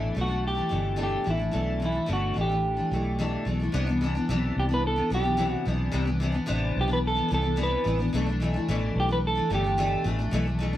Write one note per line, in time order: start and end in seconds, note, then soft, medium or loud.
0.00 0.11 A1 medium
0.00 0.13 B2 medium
0.00 0.15 E3 medium
0.00 0.15 A3 medium
0.00 0.16 D4 medium
0.00 0.15 E4 medium
0.15 0.60 B1 medium
0.15 0.29 B2 medium
0.15 0.30 E3 medium
0.15 0.29 A3 medium
0.15 0.27 D4 medium
0.21 0.47 F#4 medium
0.28 0.57 E3 soft
0.28 0.56 A3 soft
0.28 0.54 D4 medium
0.47 1.02 G4 medium
0.55 0.69 E3 soft
0.55 0.70 A3 soft
0.55 0.70 D4 medium
0.69 1.16 G1 medium
0.69 0.95 B2 medium
0.69 0.95 E3 medium
0.69 0.96 A3 medium
0.69 0.97 D4 medium
0.96 1.23 B2 medium
0.96 1.24 E3 medium
0.96 1.25 A3 medium
0.96 1.26 D4 medium
1.03 1.29 G4 medium
1.24 1.49 A1 medium
1.24 1.39 B2 medium
1.24 1.39 E3 medium
1.24 1.38 A3 medium
1.24 1.36 D4 medium
1.30 1.84 E4 medium
1.37 1.52 A3 soft
1.37 1.52 D4 soft
1.41 1.51 E3 soft
1.51 1.98 B1 medium
1.51 1.78 B2 medium
1.51 1.81 E3 medium
1.51 1.81 A3 medium
1.51 1.81 D4 medium
1.80 1.94 B2 medium
1.80 1.94 E3 medium
1.80 1.93 A3 medium
1.84 1.91 D4 medium
1.84 2.12 E4 medium
1.92 2.06 E3 soft
1.92 2.07 A3 soft
1.92 2.07 D4 medium
2.06 2.31 G1 medium
2.06 2.33 B2 medium
2.06 2.35 E3 medium
2.06 2.36 A3 medium
2.06 2.37 D4 medium
2.13 2.37 F#4 medium
2.34 2.81 A1 medium
2.34 2.49 B2 medium
2.34 2.50 E3 medium
2.34 2.50 A3 medium
2.34 2.48 D4 medium
2.41 3.45 G4 medium
2.49 2.79 E3 soft
2.49 2.77 A3 soft
2.49 2.75 D4 soft
2.77 2.92 E3 soft
2.77 2.92 A3 soft
2.77 2.91 D4 soft
2.91 3.35 B1 medium
2.91 3.17 B2 medium
2.91 3.18 E3 medium
2.91 3.19 A3 medium
2.91 3.20 D4 medium
3.19 3.44 B2 medium
3.19 3.45 E3 medium
3.19 3.46 A3 medium
3.19 3.47 D4 medium
3.45 3.68 B1 medium
3.45 3.59 B2 medium
3.45 3.60 E3 medium
3.45 3.61 A3 medium
3.45 3.58 D4 medium
3.60 3.72 E3 soft
3.60 3.74 A3 soft
3.60 3.73 D4 medium
3.72 4.18 C2 loud
3.72 3.87 C3 medium
3.72 3.87 E3 medium
3.72 3.88 B3 loud
3.72 3.86 D4 medium
3.87 4.01 E3 medium
3.87 4.02 B3 medium
3.87 4.01 D4 medium
4.01 4.15 C3 medium
4.01 4.15 E3 medium
4.01 4.15 B3 medium
4.01 4.14 D4 medium
4.15 4.29 E3 soft
4.15 4.29 B3 medium
4.15 4.29 D4 medium
4.29 4.51 B1 medium
4.29 4.70 C3 medium
4.29 4.71 E3 medium
4.29 4.69 B3 loud
4.29 4.68 D4 loud
4.57 5.01 C2 medium
4.57 4.64 G4 medium
4.69 4.98 E3 soft
4.69 4.96 B3 medium
4.69 4.95 D4 medium
4.74 4.86 B4 loud
4.87 5.11 A4 loud
4.96 5.10 E3 soft
4.96 5.11 B3 medium
4.96 5.10 D4 medium
5.10 5.55 B1 medium
5.10 5.25 C3 medium
5.10 5.25 E3 medium
5.10 5.24 B3 medium
5.10 5.22 D4 medium
5.14 5.50 G4 medium
5.23 5.37 B3 soft
5.23 5.38 D4 medium
5.28 5.37 E3 soft
5.37 5.64 C3 medium
5.37 5.65 E3 medium
5.37 5.66 B3 medium
5.37 5.67 D4 medium
5.50 5.64 F#4 medium
5.66 5.88 B1 loud
5.66 5.90 C3 medium
5.66 5.91 E3 medium
5.66 5.92 B3 medium
5.66 5.93 D4 medium
5.92 6.38 C2 loud
5.92 6.06 C3 medium
5.92 6.07 E3 medium
5.92 6.06 B3 medium
5.92 6.04 D4 medium
6.05 6.20 E3 medium
6.05 6.21 B3 medium
6.05 6.20 D4 medium
6.20 6.34 C3 medium
6.20 6.34 E3 medium
6.20 6.33 B3 medium
6.20 6.31 D4 medium
6.32 6.46 E3 soft
6.32 6.46 B3 medium
6.32 6.47 D4 medium
6.46 6.71 A1 medium
6.46 6.89 C3 medium
6.46 6.89 E3 medium
6.46 6.88 B3 loud
6.46 6.87 D4 loud
6.76 7.20 B1 medium
6.81 6.93 G4 medium
6.88 7.18 E3 soft
6.88 7.16 B3 medium
6.88 7.14 D4 medium
6.93 6.98 B4 loud
7.07 7.33 A4 loud
7.15 7.30 E3 soft
7.15 7.31 B3 medium
7.15 7.30 D4 medium
7.29 7.75 C2 medium
7.29 7.44 C3 medium
7.29 7.44 E3 medium
7.29 7.43 B3 medium
7.29 7.41 D4 medium
7.34 7.58 A4 loud
7.42 7.56 E3 soft
7.42 7.56 B3 soft
7.42 7.57 D4 medium
7.56 7.83 C3 medium
7.56 7.84 E3 medium
7.56 7.85 B3 medium
7.56 7.86 D4 medium
7.63 7.99 B4 medium
7.84 8.08 A1 medium
7.84 7.99 C3 medium
7.84 7.99 E3 medium
7.84 7.99 B3 medium
7.84 7.98 D4 medium
7.99 8.13 E3 soft
7.99 8.14 B3 medium
7.99 8.13 D4 medium
8.13 8.58 B1 loud
8.13 8.27 B2 medium
8.13 8.27 E3 medium
8.13 8.28 A3 medium
8.13 8.25 D4 loud
8.27 8.40 E3 medium
8.27 8.41 A3 medium
8.27 8.41 D4 medium
8.40 8.54 B2 medium
8.40 8.55 E3 medium
8.40 8.55 A3 medium
8.40 8.53 D4 medium
8.54 8.68 E3 medium
8.54 8.68 A3 medium
8.54 8.68 D4 medium
8.68 8.91 A1 medium
8.68 9.10 B2 medium
8.68 9.10 E3 loud
8.68 9.10 A3 medium
8.68 9.08 D4 medium
8.96 9.40 B1 medium
9.00 9.12 G4 medium
9.09 9.38 E3 soft
9.09 9.36 A3 soft
9.09 9.34 D4 medium
9.09 9.17 B4 loud
9.27 9.53 A4 loud
9.35 9.50 A3 medium
9.35 9.50 D4 medium
9.39 9.49 E3 soft
9.50 9.95 G1 loud
9.50 9.64 B2 medium
9.50 9.64 E3 medium
9.50 9.65 A3 medium
9.50 9.63 D4 medium
9.55 10.04 G4 medium
9.64 9.77 E3 soft
9.64 9.78 A3 medium
9.64 9.78 D4 medium
9.78 10.03 B2 medium
9.78 10.04 E3 medium
9.78 10.05 A3 medium
9.78 10.06 D4 loud
10.04 10.28 A1 medium
10.04 10.19 B2 medium
10.04 10.19 E3 medium
10.04 10.19 A3 medium
10.04 10.17 D4 medium
10.19 10.31 E3 soft
10.19 10.32 A3 medium
10.19 10.33 D4 medium
10.31 10.77 B1 loud
10.31 10.46 B2 medium
10.31 10.47 E3 loud
10.31 10.46 A3 loud
10.31 10.44 D4 loud
10.46 10.59 E3 medium
10.46 10.60 A3 medium
10.46 10.60 D4 medium
10.59 10.73 B2 medium
10.59 10.74 E3 medium
10.59 10.74 A3 medium
10.63 10.72 D4 medium
10.73 10.77 D4 medium